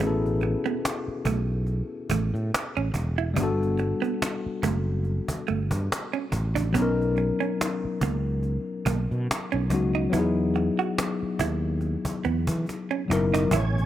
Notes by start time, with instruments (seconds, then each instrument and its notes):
Already playing: tine electric piano F#4 G#4 B4
0.00 fretless electric bass A1, hollow-body jazz guitar A3, tine electric piano B3 C#4
0.04 tine electric piano E4 A4
0.26 cajon slap
0.41 muted hollow-body jazz guitar stroke, cajon slap
0.66 hollow-body jazz guitar B3, cajon slap
0.85 cajon slap
1.08 muted fretless electric bass stroke
1.25 fretless electric bass B1, hollow-body jazz guitar A3, cajon bass
1.67 cajon slap
2.10 fretless electric bass A1, hollow-body jazz guitar A3, cajon bass
2.34 fretless electric bass A2, cajon slap
2.54 cajon slap
2.77 fretless electric bass A1, hollow-body jazz guitar C#4
2.94 fretless electric bass E1, muted hollow-body jazz guitar stroke, cajon bass
3.18 hollow-body jazz guitar E4
3.34 fretless electric bass G1, tine electric piano G3 B3, hollow-body jazz guitar G3, cajon bass
3.39 tine electric piano D4 F#4
3.43 tine electric piano A4
3.63 cajon slap
3.78 muted hollow-body jazz guitar stroke, cajon slap
4.02 hollow-body jazz guitar B3, cajon slap
4.22 cajon slap
4.46 muted fretless electric bass stroke
4.63 fretless electric bass F#1, hollow-body jazz guitar A3, cajon bass
5.04 cajon slap
5.28 cajon bass
5.48 fretless electric bass G1, hollow-body jazz guitar A3, cajon slap
5.71 fretless electric bass G2, cajon bass, cajon slap
5.92 cajon slap
6.13 hollow-body jazz guitar C#4
6.32 fretless electric bass A1, muted hollow-body jazz guitar stroke, cajon bass
6.55 hollow-body jazz guitar D4, cajon bass
6.72 fretless electric bass B1, tine electric piano F#3 B3, hollow-body jazz guitar B3, cajon bass
6.77 tine electric piano C#4 D#4
6.82 tine electric piano A#4
7.01 cajon slap
7.17 muted hollow-body jazz guitar stroke, cajon slap
7.40 hollow-body jazz guitar C#4, cajon slap
7.61 cajon slap
7.85 muted fretless electric bass stroke
8.01 fretless electric bass C#2, hollow-body jazz guitar A#3, cajon bass
8.43 cajon slap
8.86 fretless electric bass B1, hollow-body jazz guitar A#3, cajon bass
9.11 fretless electric bass B2, cajon slap
9.31 cajon slap
9.52 fretless electric bass B1, hollow-body jazz guitar C#4
9.70 fretless electric bass C#2, tine electric piano F#3 B3 C#4 D#4, muted hollow-body jazz guitar stroke, cajon bass
9.74 tine electric piano F#4
9.95 hollow-body jazz guitar D#4
10.10 fretless electric bass E2, tine electric piano F#3 B3, hollow-body jazz guitar E4, cajon bass
10.15 tine electric piano D#4 E4
10.19 tine electric piano G#4
10.55 muted hollow-body jazz guitar stroke, cajon slap
10.79 hollow-body jazz guitar F#4, cajon slap
10.98 cajon slap
11.23 muted fretless electric bass stroke
11.39 fretless electric bass D#2, hollow-body jazz guitar E4, cajon bass
11.81 cajon slap
12.05 cajon bass
12.24 fretless electric bass E2, hollow-body jazz guitar B3, cajon slap
12.47 fretless electric bass E3, cajon bass
12.66 cajon slap
12.69 cajon slap
12.91 hollow-body jazz guitar C#4
13.08 fretless electric bass F#1, tine electric piano F#3 B3 D#4 E4, muted hollow-body jazz guitar stroke, cajon slap
13.13 tine electric piano A#4
13.34 hollow-body jazz guitar D#4, cajon slap
13.51 fretless electric bass A1, tonewheel organ B2 C#3 C#4 G#4, hollow-body jazz guitar E4, cajon bass
13.78 cajon slap